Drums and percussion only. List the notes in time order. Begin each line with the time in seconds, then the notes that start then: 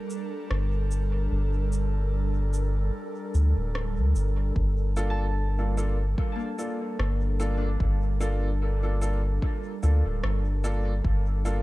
0.10 cabasa
0.51 cross-stick
0.91 cabasa
1.73 cabasa
2.54 cabasa
3.35 cabasa
3.75 cross-stick
4.16 cabasa
4.56 kick
4.97 cabasa
5.78 cabasa
6.18 kick
6.59 cabasa
6.99 cross-stick
7.40 cabasa
7.80 kick
8.21 cabasa
9.02 cabasa
9.42 kick
9.83 cabasa
10.24 cross-stick
10.64 cabasa
11.04 kick
11.46 cabasa